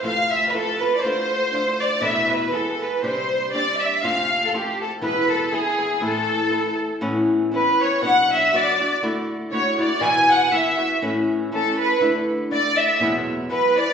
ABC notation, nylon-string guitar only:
X:1
M:2/4
L:1/8
Q:"Swing" 1/4=121
K:Am
V:1 name="Nylon-string guitar"
[F,,C,F,A,CF]2 [F,A,CF] [F,A,CF] | [D,A,DF]2 [D,A,DF]2 | [E,,B,,E,A,B,E]2 [E,^G,B,^G]2 | [C,G,CDG]2 [G,CDG]2 |
[F,,C,F,A,CF]2 [F,A,CF]2 | [E,,B,,E,^G,B,E]2 [E,G,B,E] [E,G,B,E] | [A,,E,A,CE]2 [E,A,CE]2 | [K:A] [A,,E,B,CE]2 [E,B,CE]2 |
[B,,F,B,DF]2 [F,B,DF] [B,DF] | [D,A,EF]2 [D,A,EF] [A,EF] | [E,,B,,E,B,EF]2 [E,B,EF] [E,B,EF] | [A,,E,A,CE]2 [E,A,CE]2 |
[D,A,DE]2 [D,A,DE]2 | [E,,B,,F,G,B,E]2 [F,G,B,E] [F,G,E] |]